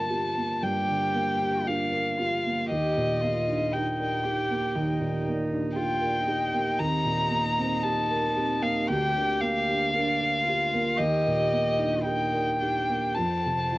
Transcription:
Already playing: felt piano G2 D3 A#3 D4 F4 A#4, violin A5
0.10 felt piano F4, marimba G4
0.36 felt piano A#3
0.63 felt piano G2, marimba G4, cello G4, violin G5
0.88 felt piano D3, marimba A#4
1.14 felt piano A#3, marimba F5
1.41 felt piano D4, marimba G4
1.65 cello D4, felt piano F4, marimba A#4, violin F5
1.92 felt piano A#4, marimba F5
2.17 cello F4, felt piano F4, marimba G4
2.45 felt piano A#3, marimba A#4
2.69 felt piano D#2, marimba D#4, cello G4, violin D#5
2.95 felt piano A#2, marimba A#4
3.21 felt piano A#3, cello F4, marimba G4
3.48 felt piano D4, marimba D#4
3.73 cello D#4, felt piano G4, marimba A#4, violin G5
3.99 felt piano A#4, marimba D5
4.24 marimba D#4, cello G4, felt piano G4
4.50 felt piano A#3
4.75 felt piano D#2, marimba D#4, cello D#4
5.01 felt piano A#2, marimba G4
5.27 felt piano A#3, marimba D5
5.51 felt piano D4, marimba D#4
5.75 cello F4, felt piano G4, violin G5
5.79 marimba G4
6.01 felt piano A#4, marimba D5
6.26 cello D#4, marimba D#4, felt piano G4
6.53 felt piano A#3, marimba G4
6.79 felt piano D#2, marimba C4, violin A#5
7.05 felt piano A#2, marimba G4
7.30 felt piano A#3, marimba D#4
7.58 felt piano C4, marimba C4
7.82 felt piano G4, marimba G4, violin A5
8.10 felt piano A#4, marimba A#4
8.36 marimba C4, felt piano G4
8.62 felt piano A#3, violin F5
8.88 felt piano D2, cello G4, marimba G4, violin G5
9.15 felt piano D3, marimba A#4
9.41 felt piano A#3, violin F5, marimba F5
9.67 felt piano D4, marimba G4
9.93 cello D4, felt piano G4, marimba A#4
10.20 felt piano A#4, marimba F5
10.44 cello F4, marimba G4, felt piano G4
10.73 felt piano A#3, marimba A#4
10.98 felt piano D#2, marimba D#4, cello G4, violin D#5
11.25 felt piano A#2, marimba A#4
11.52 felt piano A#3, marimba G4
11.79 felt piano D4, marimba D#4
12.04 cello D#4, felt piano G4, marimba A#4, violin G5
12.33 felt piano A#4, marimba D5
12.60 cello D4, marimba D#4, felt piano G4
12.89 felt piano A#3
13.15 felt piano F2, cello C4, marimba F4, violin A5
13.42 felt piano C3, marimba A4
13.72 felt piano F3, marimba D#5

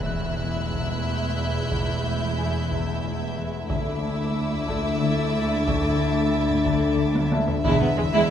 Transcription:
Already playing: double bass section E1, harp E2, synth drone E2, cello section E2, viola section G#3, violin section E4 E5 E6 F#6, impact
0.06 harp E3, felt piano F#6
0.39 harp E3
0.72 harp E2, taiko
1.04 harp E2, violin section G6
1.38 harp E3
1.70 harp E2, taiko
2.04 harp E3
2.38 harp E3, felt piano G#4 G#5
2.71 harp E2, taiko
3.04 harp E2
3.37 harp E3
3.68 double bass section D2, cello section D2, synth drone D2, harp D3, viola section A3, violin section E4 E5 D6 E6, taiko
4.02 harp D4
4.35 harp D4
4.67 harp D3, felt piano D4 A4, taiko
5.02 harp D3, violin section A6
5.34 harp D4
5.67 harp D3, felt piano C#6, taiko
5.84 taiko low-mid
6.00 harp D4
6.33 harp D4
6.50 taiko low-mid
6.66 harp D3, taiko
6.98 harp D3
7.15 taiko high
7.31 harp D4, felt piano D4 E5, taiko high
7.48 taiko low
7.64 double bass section E1, cello section E2, harp E2, synth drone E2, viola section G#3, violin section E4 E5, taiko
7.80 cello section E2, viola section G#3, violin section B3, taiko low-mid
7.98 double bass section E1, cello section E2, harp E3, violin section G#3, viola section G#3
8.13 cello section E2, viola section G#3, violin section E4

